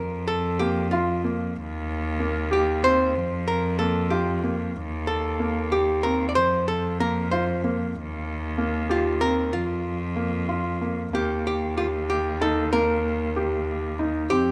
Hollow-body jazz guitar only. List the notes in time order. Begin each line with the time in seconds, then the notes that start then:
Already playing: A#4
0.28 A4
0.59 G4
0.91 F4
2.53 G4
2.84 C5
3.48 A#4
3.79 A4
4.10 G4
5.07 A4
5.72 G4
6.03 A#4
6.29 D5
6.35 C5
6.68 A4
7.00 A#4
7.31 C5
8.91 F4
9.21 A#4
9.53 F4
11.15 G4
11.47 G4
11.77 F4
12.10 G4
12.42 A4
12.73 A#4
14.30 G4